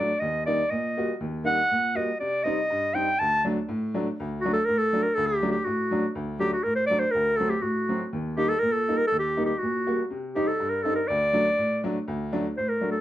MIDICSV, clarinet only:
0, 0, Header, 1, 2, 480
1, 0, Start_track
1, 0, Tempo, 493827
1, 216, Time_signature, 2, 2, 24, 8
1, 12644, End_track
2, 0, Start_track
2, 0, Title_t, "Clarinet"
2, 0, Program_c, 0, 71
2, 0, Note_on_c, 0, 74, 94
2, 190, Note_on_c, 0, 75, 88
2, 204, Note_off_c, 0, 74, 0
2, 443, Note_off_c, 0, 75, 0
2, 450, Note_on_c, 0, 74, 92
2, 681, Note_on_c, 0, 75, 80
2, 696, Note_off_c, 0, 74, 0
2, 1169, Note_off_c, 0, 75, 0
2, 1422, Note_on_c, 0, 78, 108
2, 1906, Note_on_c, 0, 75, 88
2, 1921, Note_off_c, 0, 78, 0
2, 2132, Note_off_c, 0, 75, 0
2, 2138, Note_on_c, 0, 74, 95
2, 2367, Note_on_c, 0, 75, 110
2, 2381, Note_off_c, 0, 74, 0
2, 2862, Note_on_c, 0, 79, 95
2, 2876, Note_off_c, 0, 75, 0
2, 3106, Note_on_c, 0, 81, 106
2, 3120, Note_off_c, 0, 79, 0
2, 3341, Note_off_c, 0, 81, 0
2, 4289, Note_on_c, 0, 66, 87
2, 4400, Note_off_c, 0, 66, 0
2, 4405, Note_on_c, 0, 69, 99
2, 4522, Note_on_c, 0, 70, 103
2, 4537, Note_off_c, 0, 69, 0
2, 4648, Note_on_c, 0, 69, 98
2, 4663, Note_off_c, 0, 70, 0
2, 4889, Note_on_c, 0, 70, 94
2, 4904, Note_off_c, 0, 69, 0
2, 5003, Note_on_c, 0, 69, 109
2, 5018, Note_off_c, 0, 70, 0
2, 5120, Note_on_c, 0, 67, 97
2, 5134, Note_off_c, 0, 69, 0
2, 5355, Note_off_c, 0, 67, 0
2, 5361, Note_on_c, 0, 67, 88
2, 5486, Note_on_c, 0, 66, 76
2, 5500, Note_off_c, 0, 67, 0
2, 5970, Note_off_c, 0, 66, 0
2, 6222, Note_on_c, 0, 67, 103
2, 6330, Note_off_c, 0, 67, 0
2, 6349, Note_on_c, 0, 66, 82
2, 6448, Note_on_c, 0, 70, 100
2, 6462, Note_off_c, 0, 66, 0
2, 6561, Note_off_c, 0, 70, 0
2, 6567, Note_on_c, 0, 72, 93
2, 6667, Note_off_c, 0, 72, 0
2, 6673, Note_on_c, 0, 74, 100
2, 6802, Note_on_c, 0, 72, 92
2, 6816, Note_off_c, 0, 74, 0
2, 6912, Note_on_c, 0, 70, 99
2, 6926, Note_off_c, 0, 72, 0
2, 7161, Note_on_c, 0, 69, 96
2, 7175, Note_off_c, 0, 70, 0
2, 7289, Note_on_c, 0, 67, 83
2, 7303, Note_off_c, 0, 69, 0
2, 7405, Note_on_c, 0, 66, 69
2, 7419, Note_off_c, 0, 67, 0
2, 7890, Note_off_c, 0, 66, 0
2, 8138, Note_on_c, 0, 67, 102
2, 8253, Note_on_c, 0, 69, 95
2, 8268, Note_off_c, 0, 67, 0
2, 8354, Note_on_c, 0, 70, 108
2, 8369, Note_off_c, 0, 69, 0
2, 8479, Note_on_c, 0, 69, 87
2, 8494, Note_off_c, 0, 70, 0
2, 8721, Note_on_c, 0, 70, 96
2, 8736, Note_off_c, 0, 69, 0
2, 8813, Note_off_c, 0, 70, 0
2, 8819, Note_on_c, 0, 69, 108
2, 8929, Note_off_c, 0, 69, 0
2, 8935, Note_on_c, 0, 67, 91
2, 9178, Note_off_c, 0, 67, 0
2, 9195, Note_on_c, 0, 67, 73
2, 9315, Note_on_c, 0, 66, 77
2, 9330, Note_off_c, 0, 67, 0
2, 9806, Note_off_c, 0, 66, 0
2, 10055, Note_on_c, 0, 67, 84
2, 10182, Note_on_c, 0, 69, 80
2, 10196, Note_off_c, 0, 67, 0
2, 10396, Note_on_c, 0, 70, 90
2, 10410, Note_off_c, 0, 69, 0
2, 10527, Note_on_c, 0, 69, 90
2, 10542, Note_off_c, 0, 70, 0
2, 10644, Note_off_c, 0, 69, 0
2, 10650, Note_on_c, 0, 70, 88
2, 10766, Note_on_c, 0, 74, 109
2, 10781, Note_off_c, 0, 70, 0
2, 11491, Note_off_c, 0, 74, 0
2, 12220, Note_on_c, 0, 72, 88
2, 12333, Note_on_c, 0, 70, 83
2, 12348, Note_off_c, 0, 72, 0
2, 12548, Note_off_c, 0, 70, 0
2, 12554, Note_on_c, 0, 69, 78
2, 12644, Note_off_c, 0, 69, 0
2, 12644, End_track
0, 0, End_of_file